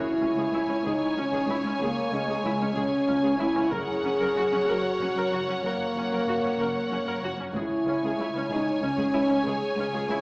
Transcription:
Already playing: E4 C#5 G#5, impact
0.21 C#2 C#4
0.36 C#2 G#4
0.52 C#2 E4
0.68 C#2 C#4
0.83 C#2 G#4
0.87 D#4
1.15 C#2 C#4
1.32 C#2 G#4, taiko
1.48 C#2 E4
1.64 C#2 C#4
1.80 C#2 A#3 G#4
2.12 C#2 G#3 C#4
2.28 C#2 G#4
2.44 C#2 E4
2.60 C#2 C#4
2.74 C#2 C#4 G#4
3.07 C#2 C#4
3.23 C#2 G#4
3.38 C#2 E4
3.56 C#2 C#4
3.71 F#1 F#2 G#4 A#4 C#5 F#5, taiko
4.03 F#1 F#2 C#4
4.20 F#2 A#4
4.35 F#1 F#2 F#4
4.52 F#2 C#4
4.65 F#1 F#2 F#4 A#4
5.00 F#1 F#2 C#4
5.15 F#2 A#4
5.31 F#1 F#2 F#4
5.47 F#2 C#4
5.62 F#1 F#2 A#3 A#4
5.95 F#1 F#2 C#4
6.10 F#2 A#4
6.26 F#1 F#2 F#4
6.42 F#2 C#4
6.58 F#1 F#2 A#4
6.89 F#1 F#2 C#4
7.06 F#2 A#4
7.23 F#1 F#2 F#4
7.37 F#2 C#4
7.53 C#2 E4 G#4 C#5 G#5, taiko
7.85 C#2 C#4
8.02 C#2 G#4
8.18 C#2 E4
8.34 C#2 C#4
8.50 C#2 D#4 G#4
8.82 C#2 C#4
8.97 C#2 G#4, taiko
9.13 C#2 E4
9.29 C#2 C#4
9.44 C#2 G#4
9.77 C#2 C#4
9.93 C#2 G#4
10.08 C#2 E4

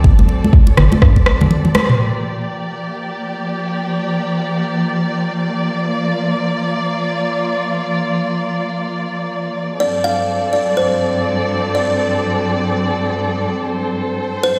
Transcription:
Already playing: F#3 C4 A4 D5
0.04 G1, kick, muted conga
0.19 G1, high conga
0.29 muted conga
0.44 high conga
0.53 kick
0.67 muted conga
0.77 G1, cross-stick, low conga
0.92 muted conga, high conga
1.02 G2, kick, cross-stick
1.16 kick, muted conga
1.26 cross-stick, high tom
1.41 high conga, low conga
1.51 mid tom, muted conga
1.65 mid tom, high conga
1.75 cross-stick, muted conga, high conga
1.89 mid tom
1.99 F3 A#3 G4 D5
5.90 F4
9.80 G2 F#3 C4 A4 D5
10.04 F5
10.53 D5
10.77 C5
11.75 D5
13.70 C5
14.43 C5

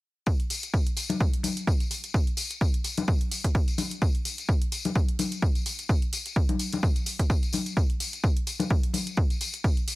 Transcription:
0.26 kick, tambourine
0.40 closed hi-hat
0.50 open hi-hat, tambourine
0.63 closed hi-hat, tambourine
0.74 kick, tambourine
0.87 closed hi-hat
0.97 open hi-hat, tambourine
1.09 closed hi-hat, tambourine, high conga
1.20 kick, tambourine
1.33 closed hi-hat
1.43 open hi-hat, tambourine, high conga
1.57 closed hi-hat, tambourine
1.67 kick, tambourine
1.80 closed hi-hat, tambourine
1.91 open hi-hat, tambourine
2.04 closed hi-hat, tambourine
2.14 kick, tambourine
2.27 closed hi-hat
2.37 open hi-hat, tambourine
2.50 closed hi-hat, tambourine
2.61 kick, tambourine
2.74 closed hi-hat
2.84 open hi-hat, tambourine
2.98 closed hi-hat, tambourine, high conga
3.08 kick, tambourine
3.21 closed hi-hat
3.31 open hi-hat, tambourine
3.44 kick, closed hi-hat, tambourine
3.55 kick, tambourine
3.68 closed hi-hat, tambourine
3.78 open hi-hat, tambourine, high conga
3.90 closed hi-hat, tambourine
4.02 kick, tambourine
4.15 closed hi-hat
4.25 open hi-hat, tambourine
4.38 closed hi-hat, tambourine
4.49 kick, tambourine
4.62 closed hi-hat
4.72 open hi-hat, tambourine
4.85 closed hi-hat, tambourine, high conga
4.95 kick, tambourine
5.09 closed hi-hat
5.19 open hi-hat, tambourine, high conga
5.31 closed hi-hat, tambourine
5.42 kick, tambourine
5.55 closed hi-hat, tambourine
5.66 open hi-hat, tambourine
5.79 closed hi-hat, tambourine
5.89 kick, tambourine
6.02 closed hi-hat
6.13 open hi-hat, tambourine
6.26 closed hi-hat, tambourine
6.36 kick, tambourine
6.49 closed hi-hat, high conga
6.59 open hi-hat, tambourine
6.73 closed hi-hat, tambourine, high conga
6.83 kick, tambourine
6.96 closed hi-hat, tambourine
7.06 open hi-hat, tambourine
7.19 kick, closed hi-hat, tambourine
7.30 kick, tambourine
7.43 closed hi-hat, tambourine
7.53 open hi-hat, tambourine, high conga
7.66 closed hi-hat, tambourine
7.77 kick, tambourine
7.90 closed hi-hat
8.00 open hi-hat, tambourine
8.13 closed hi-hat, tambourine
8.24 kick, tambourine
8.37 closed hi-hat
8.47 open hi-hat, tambourine
8.59 closed hi-hat, tambourine, high conga
8.70 kick, tambourine
8.83 closed hi-hat
8.93 open hi-hat, tambourine, high conga
9.07 closed hi-hat, tambourine
9.17 kick, tambourine
9.30 closed hi-hat, tambourine
9.41 open hi-hat, tambourine
9.53 closed hi-hat, tambourine
9.64 kick, tambourine
9.77 closed hi-hat
9.88 open hi-hat, tambourine

